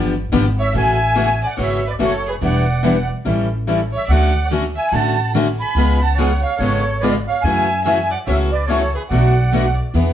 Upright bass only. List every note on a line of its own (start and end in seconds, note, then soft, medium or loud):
0.00 0.31 G1 medium
0.33 0.73 G#1 loud
0.74 1.41 A1 medium
1.58 1.94 G#1 medium
2.00 2.35 F#1 medium
2.42 3.09 E1 medium
3.25 3.92 A1 medium
4.08 4.76 D2 medium
4.92 5.59 A1 medium
5.75 6.43 C#2 medium
6.59 7.26 G#1 medium
7.44 8.11 F#2 medium
8.27 8.94 C#2 medium
9.10 9.77 B1 medium
9.94 10.13 E2 medium